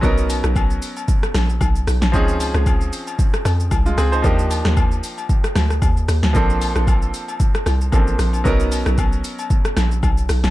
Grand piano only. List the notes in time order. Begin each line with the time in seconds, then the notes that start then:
0.01 F#3 B3 C#4 D#4 A#4
2.12 F3 C4 C#4 D#4 G#4
3.86 G#3 F4
3.98 C4 G#4
4.12 D#4 C5
4.22 F3 A#3 D4 D#4 G4
6.33 F3 A#3 C4 D4 A4
7.92 F3 A#3 C4 D4 A4
8.44 F#3 B3 C#4 D#4 A#4